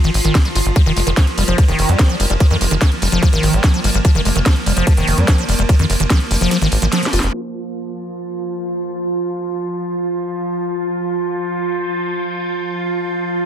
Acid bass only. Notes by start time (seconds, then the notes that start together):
0.04 D#3
0.25 D#3
0.45 G3
0.55 F4
0.76 F3
0.86 D#3
0.97 G#3
1.07 D#3
1.17 F3
1.38 G3
1.48 F3
1.68 D#3
1.89 G3
1.99 F3
2.10 F3
2.20 G3
2.30 G3
2.40 F3
2.51 D#3
2.61 G#3
2.71 D#3
2.81 F3
3.02 G3
3.12 F3
3.23 F3
3.33 D#3
3.53 G3
3.64 F3
3.74 F3
3.84 G3
3.94 G3
4.05 F3
4.15 D#3
4.25 G#3
4.36 D#3
4.46 F3
4.66 G3
4.77 F3
4.87 F3
4.97 D#3
5.18 G3
5.28 F3
5.38 F3
5.49 G3
5.59 G3
5.69 F3
5.79 D#3
5.90 G#3
6.00 D#3
6.10 F3
6.31 G3
6.41 F3
6.51 F3
6.62 D#3
6.82 F3
6.92 F3
7.03 F3
7.13 F4